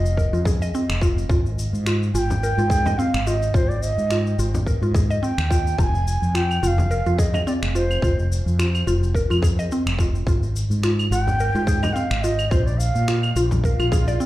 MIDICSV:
0, 0, Header, 1, 7, 480
1, 0, Start_track
1, 0, Tempo, 560748
1, 1115, Time_signature, 4, 2, 24, 8
1, 12205, End_track
2, 0, Start_track
2, 0, Title_t, "Bansuri"
2, 0, Program_c, 0, 73
2, 0, Note_on_c, 0, 75, 87
2, 396, Note_off_c, 0, 75, 0
2, 1833, Note_on_c, 0, 80, 106
2, 1873, Note_on_c, 0, 79, 116
2, 1881, Note_off_c, 0, 80, 0
2, 2552, Note_on_c, 0, 77, 97
2, 2564, Note_off_c, 0, 79, 0
2, 2792, Note_on_c, 0, 75, 93
2, 2805, Note_off_c, 0, 77, 0
2, 3039, Note_on_c, 0, 72, 87
2, 3052, Note_off_c, 0, 75, 0
2, 3156, Note_on_c, 0, 74, 82
2, 3169, Note_off_c, 0, 72, 0
2, 3270, Note_on_c, 0, 75, 88
2, 3283, Note_off_c, 0, 74, 0
2, 3753, Note_off_c, 0, 75, 0
2, 4472, Note_on_c, 0, 79, 102
2, 4956, Note_on_c, 0, 82, 101
2, 4969, Note_off_c, 0, 79, 0
2, 4985, Note_on_c, 0, 80, 109
2, 4993, Note_off_c, 0, 82, 0
2, 5443, Note_on_c, 0, 79, 110
2, 5456, Note_off_c, 0, 80, 0
2, 5673, Note_off_c, 0, 79, 0
2, 5673, Note_on_c, 0, 79, 97
2, 5712, Note_on_c, 0, 77, 105
2, 5721, Note_off_c, 0, 79, 0
2, 6149, Note_on_c, 0, 75, 88
2, 6162, Note_off_c, 0, 77, 0
2, 6388, Note_off_c, 0, 75, 0
2, 6393, Note_on_c, 0, 74, 88
2, 6447, Note_off_c, 0, 74, 0
2, 6636, Note_on_c, 0, 72, 79
2, 7082, Note_off_c, 0, 72, 0
2, 9517, Note_on_c, 0, 78, 121
2, 9628, Note_off_c, 0, 78, 0
2, 9628, Note_on_c, 0, 79, 121
2, 10214, Note_on_c, 0, 77, 102
2, 10227, Note_off_c, 0, 79, 0
2, 10458, Note_on_c, 0, 75, 96
2, 10471, Note_off_c, 0, 77, 0
2, 10709, Note_on_c, 0, 72, 91
2, 10722, Note_off_c, 0, 75, 0
2, 10839, Note_on_c, 0, 74, 84
2, 10851, Note_off_c, 0, 72, 0
2, 10948, Note_on_c, 0, 77, 97
2, 10961, Note_off_c, 0, 74, 0
2, 11432, Note_off_c, 0, 77, 0
2, 12205, End_track
3, 0, Start_track
3, 0, Title_t, "Synth pluck"
3, 0, Program_c, 1, 84
3, 0, Note_on_c, 1, 65, 74
3, 143, Note_off_c, 1, 65, 0
3, 152, Note_on_c, 1, 70, 85
3, 279, Note_off_c, 1, 70, 0
3, 284, Note_on_c, 1, 65, 76
3, 383, Note_off_c, 1, 65, 0
3, 393, Note_on_c, 1, 68, 81
3, 513, Note_off_c, 1, 68, 0
3, 530, Note_on_c, 1, 75, 99
3, 590, Note_off_c, 1, 75, 0
3, 639, Note_on_c, 1, 60, 95
3, 866, Note_off_c, 1, 60, 0
3, 875, Note_on_c, 1, 65, 77
3, 1104, Note_off_c, 1, 65, 0
3, 1119, Note_on_c, 1, 65, 77
3, 1242, Note_off_c, 1, 65, 0
3, 1600, Note_on_c, 1, 65, 85
3, 1827, Note_off_c, 1, 65, 0
3, 1839, Note_on_c, 1, 65, 70
3, 2066, Note_off_c, 1, 65, 0
3, 2083, Note_on_c, 1, 70, 77
3, 2204, Note_off_c, 1, 70, 0
3, 2213, Note_on_c, 1, 65, 75
3, 2308, Note_off_c, 1, 65, 0
3, 2322, Note_on_c, 1, 68, 77
3, 2437, Note_off_c, 1, 68, 0
3, 2451, Note_on_c, 1, 75, 100
3, 2511, Note_off_c, 1, 75, 0
3, 2557, Note_on_c, 1, 60, 94
3, 2785, Note_off_c, 1, 60, 0
3, 2800, Note_on_c, 1, 65, 75
3, 3027, Note_off_c, 1, 65, 0
3, 3037, Note_on_c, 1, 65, 80
3, 3161, Note_off_c, 1, 65, 0
3, 3521, Note_on_c, 1, 65, 79
3, 3747, Note_off_c, 1, 65, 0
3, 3759, Note_on_c, 1, 65, 75
3, 3986, Note_off_c, 1, 65, 0
3, 3998, Note_on_c, 1, 70, 74
3, 4122, Note_off_c, 1, 70, 0
3, 4131, Note_on_c, 1, 65, 71
3, 4226, Note_off_c, 1, 65, 0
3, 4234, Note_on_c, 1, 68, 75
3, 4353, Note_off_c, 1, 68, 0
3, 4370, Note_on_c, 1, 75, 103
3, 4430, Note_off_c, 1, 75, 0
3, 4475, Note_on_c, 1, 60, 96
3, 4704, Note_off_c, 1, 60, 0
3, 4714, Note_on_c, 1, 65, 74
3, 4942, Note_off_c, 1, 65, 0
3, 4952, Note_on_c, 1, 65, 80
3, 5079, Note_off_c, 1, 65, 0
3, 5433, Note_on_c, 1, 65, 81
3, 5663, Note_off_c, 1, 65, 0
3, 5674, Note_on_c, 1, 65, 76
3, 5904, Note_off_c, 1, 65, 0
3, 5912, Note_on_c, 1, 70, 78
3, 6039, Note_off_c, 1, 70, 0
3, 6047, Note_on_c, 1, 65, 76
3, 6144, Note_off_c, 1, 65, 0
3, 6151, Note_on_c, 1, 68, 81
3, 6272, Note_off_c, 1, 68, 0
3, 6285, Note_on_c, 1, 75, 109
3, 6347, Note_off_c, 1, 75, 0
3, 6395, Note_on_c, 1, 60, 100
3, 6624, Note_off_c, 1, 60, 0
3, 6635, Note_on_c, 1, 65, 78
3, 6864, Note_off_c, 1, 65, 0
3, 6876, Note_on_c, 1, 65, 81
3, 7001, Note_off_c, 1, 65, 0
3, 7355, Note_on_c, 1, 65, 81
3, 7584, Note_off_c, 1, 65, 0
3, 7594, Note_on_c, 1, 65, 75
3, 7824, Note_off_c, 1, 65, 0
3, 7835, Note_on_c, 1, 70, 84
3, 7960, Note_off_c, 1, 70, 0
3, 7963, Note_on_c, 1, 65, 76
3, 8062, Note_off_c, 1, 65, 0
3, 8076, Note_on_c, 1, 68, 82
3, 8194, Note_off_c, 1, 68, 0
3, 8209, Note_on_c, 1, 75, 98
3, 8269, Note_off_c, 1, 75, 0
3, 8322, Note_on_c, 1, 60, 97
3, 8548, Note_off_c, 1, 60, 0
3, 8562, Note_on_c, 1, 65, 78
3, 8788, Note_off_c, 1, 65, 0
3, 8803, Note_on_c, 1, 65, 79
3, 8924, Note_off_c, 1, 65, 0
3, 9277, Note_on_c, 1, 65, 83
3, 9505, Note_off_c, 1, 65, 0
3, 9520, Note_on_c, 1, 65, 74
3, 9747, Note_off_c, 1, 65, 0
3, 9761, Note_on_c, 1, 70, 79
3, 9884, Note_off_c, 1, 70, 0
3, 9891, Note_on_c, 1, 65, 69
3, 9986, Note_off_c, 1, 65, 0
3, 9995, Note_on_c, 1, 68, 81
3, 10114, Note_off_c, 1, 68, 0
3, 10125, Note_on_c, 1, 75, 102
3, 10188, Note_off_c, 1, 75, 0
3, 10235, Note_on_c, 1, 60, 91
3, 10464, Note_off_c, 1, 60, 0
3, 10477, Note_on_c, 1, 65, 78
3, 10705, Note_off_c, 1, 65, 0
3, 10717, Note_on_c, 1, 65, 79
3, 10841, Note_off_c, 1, 65, 0
3, 11199, Note_on_c, 1, 65, 81
3, 11426, Note_off_c, 1, 65, 0
3, 11440, Note_on_c, 1, 65, 74
3, 11667, Note_off_c, 1, 65, 0
3, 11684, Note_on_c, 1, 70, 76
3, 11805, Note_off_c, 1, 70, 0
3, 11810, Note_on_c, 1, 65, 74
3, 11906, Note_off_c, 1, 65, 0
3, 11919, Note_on_c, 1, 68, 82
3, 12036, Note_off_c, 1, 68, 0
3, 12050, Note_on_c, 1, 74, 104
3, 12110, Note_off_c, 1, 74, 0
3, 12157, Note_on_c, 1, 60, 90
3, 12205, Note_off_c, 1, 60, 0
3, 12205, End_track
4, 0, Start_track
4, 0, Title_t, "Fretless electric bass"
4, 0, Program_c, 2, 35
4, 0, Note_on_c, 2, 29, 86
4, 235, Note_off_c, 2, 29, 0
4, 282, Note_on_c, 2, 41, 88
4, 593, Note_off_c, 2, 41, 0
4, 763, Note_on_c, 2, 29, 71
4, 1073, Note_off_c, 2, 29, 0
4, 1108, Note_on_c, 2, 32, 100
4, 1434, Note_off_c, 2, 32, 0
4, 1481, Note_on_c, 2, 44, 78
4, 1792, Note_off_c, 2, 44, 0
4, 1832, Note_on_c, 2, 32, 85
4, 2157, Note_off_c, 2, 32, 0
4, 2205, Note_on_c, 2, 44, 88
4, 2514, Note_off_c, 2, 44, 0
4, 2687, Note_on_c, 2, 32, 74
4, 2995, Note_off_c, 2, 32, 0
4, 3030, Note_on_c, 2, 32, 97
4, 3355, Note_off_c, 2, 32, 0
4, 3404, Note_on_c, 2, 44, 73
4, 3713, Note_off_c, 2, 44, 0
4, 3753, Note_on_c, 2, 32, 85
4, 4077, Note_off_c, 2, 32, 0
4, 4124, Note_on_c, 2, 44, 86
4, 4433, Note_off_c, 2, 44, 0
4, 4604, Note_on_c, 2, 39, 78
4, 4913, Note_off_c, 2, 39, 0
4, 4951, Note_on_c, 2, 29, 91
4, 5276, Note_off_c, 2, 29, 0
4, 5325, Note_on_c, 2, 41, 71
4, 5634, Note_off_c, 2, 41, 0
4, 5674, Note_on_c, 2, 29, 87
4, 5998, Note_off_c, 2, 29, 0
4, 6044, Note_on_c, 2, 41, 86
4, 6354, Note_off_c, 2, 41, 0
4, 6525, Note_on_c, 2, 29, 74
4, 6834, Note_off_c, 2, 29, 0
4, 6866, Note_on_c, 2, 29, 93
4, 7193, Note_off_c, 2, 29, 0
4, 7243, Note_on_c, 2, 41, 74
4, 7553, Note_off_c, 2, 41, 0
4, 7592, Note_on_c, 2, 29, 88
4, 7917, Note_off_c, 2, 29, 0
4, 7964, Note_on_c, 2, 41, 85
4, 8273, Note_off_c, 2, 41, 0
4, 8440, Note_on_c, 2, 29, 77
4, 8752, Note_off_c, 2, 29, 0
4, 8787, Note_on_c, 2, 32, 96
4, 9114, Note_off_c, 2, 32, 0
4, 9160, Note_on_c, 2, 44, 74
4, 9471, Note_off_c, 2, 44, 0
4, 9509, Note_on_c, 2, 32, 88
4, 9835, Note_off_c, 2, 32, 0
4, 9884, Note_on_c, 2, 44, 85
4, 10194, Note_off_c, 2, 44, 0
4, 10363, Note_on_c, 2, 32, 80
4, 10673, Note_off_c, 2, 32, 0
4, 10712, Note_on_c, 2, 34, 92
4, 11037, Note_off_c, 2, 34, 0
4, 11087, Note_on_c, 2, 46, 78
4, 11395, Note_off_c, 2, 46, 0
4, 11434, Note_on_c, 2, 34, 82
4, 11757, Note_off_c, 2, 34, 0
4, 11805, Note_on_c, 2, 34, 88
4, 12114, Note_off_c, 2, 34, 0
4, 12205, End_track
5, 0, Start_track
5, 0, Title_t, "Swell"
5, 0, Program_c, 3, 103
5, 11674, Note_on_c, 3, 60, 76
5, 12205, Note_off_c, 3, 60, 0
5, 12205, End_track
6, 0, Start_track
6, 0, Title_t, "Frame drum"
6, 387, Note_on_c, 9, 64, 81
6, 473, Note_off_c, 9, 64, 0
6, 1971, Note_on_c, 9, 64, 75
6, 2057, Note_off_c, 9, 64, 0
6, 2444, Note_on_c, 9, 64, 93
6, 2530, Note_off_c, 9, 64, 0
6, 3890, Note_on_c, 9, 64, 77
6, 3976, Note_off_c, 9, 64, 0
6, 4237, Note_on_c, 9, 64, 79
6, 4322, Note_off_c, 9, 64, 0
6, 5804, Note_on_c, 9, 64, 84
6, 5889, Note_off_c, 9, 64, 0
6, 6280, Note_on_c, 9, 64, 84
6, 6365, Note_off_c, 9, 64, 0
6, 8063, Note_on_c, 9, 64, 72
6, 8149, Note_off_c, 9, 64, 0
6, 9649, Note_on_c, 9, 64, 72
6, 9735, Note_off_c, 9, 64, 0
6, 10130, Note_on_c, 9, 64, 89
6, 10215, Note_off_c, 9, 64, 0
6, 11565, Note_on_c, 9, 64, 77
6, 11651, Note_off_c, 9, 64, 0
6, 11916, Note_on_c, 9, 64, 80
6, 12001, Note_off_c, 9, 64, 0
6, 12205, End_track
7, 0, Start_track
7, 0, Title_t, "Drums"
7, 49, Note_on_c, 9, 69, 34
7, 135, Note_off_c, 9, 69, 0
7, 149, Note_on_c, 9, 36, 57
7, 161, Note_on_c, 9, 69, 42
7, 234, Note_off_c, 9, 36, 0
7, 247, Note_off_c, 9, 69, 0
7, 292, Note_on_c, 9, 69, 21
7, 378, Note_off_c, 9, 69, 0
7, 389, Note_on_c, 9, 36, 96
7, 400, Note_on_c, 9, 69, 75
7, 474, Note_off_c, 9, 36, 0
7, 486, Note_off_c, 9, 69, 0
7, 532, Note_on_c, 9, 69, 36
7, 618, Note_off_c, 9, 69, 0
7, 639, Note_on_c, 9, 69, 44
7, 724, Note_off_c, 9, 69, 0
7, 767, Note_on_c, 9, 26, 81
7, 771, Note_on_c, 9, 69, 24
7, 853, Note_off_c, 9, 26, 0
7, 856, Note_off_c, 9, 69, 0
7, 869, Note_on_c, 9, 36, 102
7, 878, Note_on_c, 9, 69, 76
7, 954, Note_off_c, 9, 36, 0
7, 964, Note_off_c, 9, 69, 0
7, 1013, Note_on_c, 9, 69, 31
7, 1098, Note_off_c, 9, 69, 0
7, 1109, Note_on_c, 9, 36, 123
7, 1118, Note_on_c, 9, 69, 45
7, 1194, Note_off_c, 9, 36, 0
7, 1204, Note_off_c, 9, 69, 0
7, 1251, Note_on_c, 9, 69, 23
7, 1337, Note_off_c, 9, 69, 0
7, 1359, Note_on_c, 9, 69, 78
7, 1444, Note_off_c, 9, 69, 0
7, 1495, Note_on_c, 9, 69, 33
7, 1581, Note_off_c, 9, 69, 0
7, 1596, Note_on_c, 9, 26, 76
7, 1600, Note_on_c, 9, 69, 46
7, 1681, Note_off_c, 9, 26, 0
7, 1685, Note_off_c, 9, 69, 0
7, 1736, Note_on_c, 9, 69, 22
7, 1822, Note_off_c, 9, 69, 0
7, 1842, Note_on_c, 9, 69, 73
7, 1927, Note_off_c, 9, 69, 0
7, 1976, Note_on_c, 9, 69, 32
7, 2061, Note_off_c, 9, 69, 0
7, 2084, Note_on_c, 9, 69, 44
7, 2170, Note_off_c, 9, 69, 0
7, 2215, Note_on_c, 9, 69, 22
7, 2300, Note_off_c, 9, 69, 0
7, 2310, Note_on_c, 9, 36, 103
7, 2322, Note_on_c, 9, 69, 77
7, 2396, Note_off_c, 9, 36, 0
7, 2408, Note_off_c, 9, 69, 0
7, 2454, Note_on_c, 9, 69, 33
7, 2539, Note_off_c, 9, 69, 0
7, 2563, Note_on_c, 9, 69, 44
7, 2648, Note_off_c, 9, 69, 0
7, 2691, Note_on_c, 9, 26, 76
7, 2694, Note_on_c, 9, 69, 24
7, 2776, Note_off_c, 9, 26, 0
7, 2780, Note_off_c, 9, 69, 0
7, 2799, Note_on_c, 9, 69, 82
7, 2885, Note_off_c, 9, 69, 0
7, 2932, Note_on_c, 9, 69, 34
7, 3018, Note_off_c, 9, 69, 0
7, 3031, Note_on_c, 9, 36, 118
7, 3041, Note_on_c, 9, 69, 44
7, 3117, Note_off_c, 9, 36, 0
7, 3127, Note_off_c, 9, 69, 0
7, 3175, Note_on_c, 9, 69, 21
7, 3260, Note_off_c, 9, 69, 0
7, 3277, Note_on_c, 9, 69, 80
7, 3363, Note_off_c, 9, 69, 0
7, 3411, Note_on_c, 9, 69, 32
7, 3497, Note_off_c, 9, 69, 0
7, 3514, Note_on_c, 9, 26, 75
7, 3518, Note_on_c, 9, 69, 43
7, 3600, Note_off_c, 9, 26, 0
7, 3604, Note_off_c, 9, 69, 0
7, 3652, Note_on_c, 9, 69, 22
7, 3738, Note_off_c, 9, 69, 0
7, 3759, Note_on_c, 9, 69, 74
7, 3845, Note_off_c, 9, 69, 0
7, 3893, Note_on_c, 9, 69, 33
7, 3979, Note_off_c, 9, 69, 0
7, 3993, Note_on_c, 9, 36, 59
7, 4000, Note_on_c, 9, 69, 41
7, 4079, Note_off_c, 9, 36, 0
7, 4085, Note_off_c, 9, 69, 0
7, 4131, Note_on_c, 9, 69, 20
7, 4216, Note_off_c, 9, 69, 0
7, 4233, Note_on_c, 9, 36, 103
7, 4240, Note_on_c, 9, 69, 77
7, 4319, Note_off_c, 9, 36, 0
7, 4326, Note_off_c, 9, 69, 0
7, 4372, Note_on_c, 9, 69, 33
7, 4458, Note_off_c, 9, 69, 0
7, 4484, Note_on_c, 9, 69, 45
7, 4570, Note_off_c, 9, 69, 0
7, 4608, Note_on_c, 9, 26, 75
7, 4612, Note_on_c, 9, 69, 22
7, 4694, Note_off_c, 9, 26, 0
7, 4698, Note_off_c, 9, 69, 0
7, 4713, Note_on_c, 9, 36, 100
7, 4722, Note_on_c, 9, 69, 77
7, 4798, Note_off_c, 9, 36, 0
7, 4808, Note_off_c, 9, 69, 0
7, 4855, Note_on_c, 9, 69, 32
7, 4940, Note_off_c, 9, 69, 0
7, 4952, Note_on_c, 9, 36, 125
7, 4962, Note_on_c, 9, 69, 45
7, 5038, Note_off_c, 9, 36, 0
7, 5048, Note_off_c, 9, 69, 0
7, 5093, Note_on_c, 9, 69, 21
7, 5179, Note_off_c, 9, 69, 0
7, 5201, Note_on_c, 9, 69, 79
7, 5286, Note_off_c, 9, 69, 0
7, 5333, Note_on_c, 9, 69, 31
7, 5419, Note_off_c, 9, 69, 0
7, 5436, Note_on_c, 9, 26, 75
7, 5440, Note_on_c, 9, 69, 43
7, 5522, Note_off_c, 9, 26, 0
7, 5526, Note_off_c, 9, 69, 0
7, 5571, Note_on_c, 9, 75, 71
7, 5575, Note_on_c, 9, 69, 21
7, 5656, Note_off_c, 9, 75, 0
7, 5660, Note_off_c, 9, 69, 0
7, 5680, Note_on_c, 9, 69, 74
7, 5765, Note_off_c, 9, 69, 0
7, 5814, Note_on_c, 9, 69, 35
7, 5899, Note_off_c, 9, 69, 0
7, 5916, Note_on_c, 9, 69, 40
7, 6002, Note_off_c, 9, 69, 0
7, 6048, Note_on_c, 9, 69, 20
7, 6133, Note_off_c, 9, 69, 0
7, 6150, Note_on_c, 9, 36, 96
7, 6157, Note_on_c, 9, 69, 78
7, 6236, Note_off_c, 9, 36, 0
7, 6243, Note_off_c, 9, 69, 0
7, 6287, Note_on_c, 9, 75, 57
7, 6291, Note_on_c, 9, 69, 35
7, 6373, Note_off_c, 9, 75, 0
7, 6376, Note_off_c, 9, 69, 0
7, 6400, Note_on_c, 9, 69, 41
7, 6485, Note_off_c, 9, 69, 0
7, 6528, Note_on_c, 9, 26, 73
7, 6532, Note_on_c, 9, 69, 22
7, 6614, Note_off_c, 9, 26, 0
7, 6618, Note_off_c, 9, 69, 0
7, 6640, Note_on_c, 9, 69, 75
7, 6725, Note_off_c, 9, 69, 0
7, 6768, Note_on_c, 9, 75, 66
7, 6772, Note_on_c, 9, 69, 32
7, 6854, Note_off_c, 9, 75, 0
7, 6857, Note_off_c, 9, 69, 0
7, 6868, Note_on_c, 9, 36, 111
7, 6880, Note_on_c, 9, 69, 40
7, 6954, Note_off_c, 9, 36, 0
7, 6966, Note_off_c, 9, 69, 0
7, 7012, Note_on_c, 9, 69, 21
7, 7097, Note_off_c, 9, 69, 0
7, 7123, Note_on_c, 9, 69, 75
7, 7209, Note_off_c, 9, 69, 0
7, 7256, Note_on_c, 9, 69, 31
7, 7342, Note_off_c, 9, 69, 0
7, 7357, Note_on_c, 9, 26, 70
7, 7361, Note_on_c, 9, 69, 41
7, 7443, Note_off_c, 9, 26, 0
7, 7447, Note_off_c, 9, 69, 0
7, 7488, Note_on_c, 9, 75, 75
7, 7492, Note_on_c, 9, 69, 21
7, 7574, Note_off_c, 9, 75, 0
7, 7577, Note_off_c, 9, 69, 0
7, 7600, Note_on_c, 9, 69, 69
7, 7686, Note_off_c, 9, 69, 0
7, 7731, Note_on_c, 9, 69, 31
7, 7817, Note_off_c, 9, 69, 0
7, 7828, Note_on_c, 9, 36, 58
7, 7840, Note_on_c, 9, 69, 43
7, 7914, Note_off_c, 9, 36, 0
7, 7926, Note_off_c, 9, 69, 0
7, 7970, Note_on_c, 9, 75, 72
7, 7974, Note_on_c, 9, 69, 20
7, 8055, Note_off_c, 9, 75, 0
7, 8059, Note_off_c, 9, 69, 0
7, 8068, Note_on_c, 9, 36, 95
7, 8079, Note_on_c, 9, 69, 74
7, 8154, Note_off_c, 9, 36, 0
7, 8165, Note_off_c, 9, 69, 0
7, 8210, Note_on_c, 9, 69, 33
7, 8296, Note_off_c, 9, 69, 0
7, 8316, Note_on_c, 9, 69, 43
7, 8402, Note_off_c, 9, 69, 0
7, 8448, Note_on_c, 9, 26, 75
7, 8448, Note_on_c, 9, 75, 59
7, 8452, Note_on_c, 9, 69, 21
7, 8534, Note_off_c, 9, 26, 0
7, 8534, Note_off_c, 9, 75, 0
7, 8537, Note_off_c, 9, 69, 0
7, 8548, Note_on_c, 9, 36, 95
7, 8559, Note_on_c, 9, 69, 74
7, 8633, Note_off_c, 9, 36, 0
7, 8644, Note_off_c, 9, 69, 0
7, 8690, Note_on_c, 9, 69, 29
7, 8775, Note_off_c, 9, 69, 0
7, 8788, Note_on_c, 9, 36, 108
7, 8798, Note_on_c, 9, 69, 43
7, 8874, Note_off_c, 9, 36, 0
7, 8884, Note_off_c, 9, 69, 0
7, 8929, Note_on_c, 9, 69, 21
7, 9015, Note_off_c, 9, 69, 0
7, 9039, Note_on_c, 9, 69, 75
7, 9125, Note_off_c, 9, 69, 0
7, 9171, Note_on_c, 9, 69, 30
7, 9256, Note_off_c, 9, 69, 0
7, 9274, Note_on_c, 9, 26, 71
7, 9278, Note_on_c, 9, 69, 40
7, 9360, Note_off_c, 9, 26, 0
7, 9364, Note_off_c, 9, 69, 0
7, 9411, Note_on_c, 9, 75, 79
7, 9414, Note_on_c, 9, 69, 20
7, 9496, Note_off_c, 9, 75, 0
7, 9500, Note_off_c, 9, 69, 0
7, 9521, Note_on_c, 9, 69, 65
7, 9607, Note_off_c, 9, 69, 0
7, 9655, Note_on_c, 9, 69, 31
7, 9740, Note_off_c, 9, 69, 0
7, 9757, Note_on_c, 9, 69, 39
7, 9843, Note_off_c, 9, 69, 0
7, 9890, Note_on_c, 9, 69, 20
7, 9976, Note_off_c, 9, 69, 0
7, 9990, Note_on_c, 9, 36, 99
7, 9996, Note_on_c, 9, 69, 74
7, 10075, Note_off_c, 9, 36, 0
7, 10082, Note_off_c, 9, 69, 0
7, 10126, Note_on_c, 9, 75, 62
7, 10130, Note_on_c, 9, 69, 32
7, 10212, Note_off_c, 9, 75, 0
7, 10216, Note_off_c, 9, 69, 0
7, 10237, Note_on_c, 9, 69, 41
7, 10323, Note_off_c, 9, 69, 0
7, 10366, Note_on_c, 9, 26, 73
7, 10370, Note_on_c, 9, 69, 21
7, 10452, Note_off_c, 9, 26, 0
7, 10456, Note_off_c, 9, 69, 0
7, 10476, Note_on_c, 9, 69, 74
7, 10562, Note_off_c, 9, 69, 0
7, 10604, Note_on_c, 9, 75, 80
7, 10608, Note_on_c, 9, 69, 29
7, 10690, Note_off_c, 9, 75, 0
7, 10693, Note_off_c, 9, 69, 0
7, 10711, Note_on_c, 9, 36, 118
7, 10717, Note_on_c, 9, 69, 43
7, 10797, Note_off_c, 9, 36, 0
7, 10803, Note_off_c, 9, 69, 0
7, 10850, Note_on_c, 9, 69, 21
7, 10936, Note_off_c, 9, 69, 0
7, 10958, Note_on_c, 9, 69, 77
7, 11044, Note_off_c, 9, 69, 0
7, 11090, Note_on_c, 9, 69, 32
7, 11176, Note_off_c, 9, 69, 0
7, 11197, Note_on_c, 9, 26, 80
7, 11200, Note_on_c, 9, 69, 40
7, 11282, Note_off_c, 9, 26, 0
7, 11286, Note_off_c, 9, 69, 0
7, 11327, Note_on_c, 9, 75, 83
7, 11330, Note_on_c, 9, 69, 21
7, 11412, Note_off_c, 9, 75, 0
7, 11416, Note_off_c, 9, 69, 0
7, 11438, Note_on_c, 9, 69, 72
7, 11523, Note_off_c, 9, 69, 0
7, 11570, Note_on_c, 9, 69, 31
7, 11656, Note_off_c, 9, 69, 0
7, 11673, Note_on_c, 9, 36, 57
7, 11681, Note_on_c, 9, 69, 43
7, 11758, Note_off_c, 9, 36, 0
7, 11767, Note_off_c, 9, 69, 0
7, 11810, Note_on_c, 9, 75, 81
7, 11813, Note_on_c, 9, 69, 20
7, 11895, Note_off_c, 9, 75, 0
7, 11899, Note_off_c, 9, 69, 0
7, 11914, Note_on_c, 9, 36, 99
7, 11921, Note_on_c, 9, 69, 71
7, 12000, Note_off_c, 9, 36, 0
7, 12007, Note_off_c, 9, 69, 0
7, 12052, Note_on_c, 9, 69, 34
7, 12138, Note_off_c, 9, 69, 0
7, 12160, Note_on_c, 9, 69, 40
7, 12205, Note_off_c, 9, 69, 0
7, 12205, End_track
0, 0, End_of_file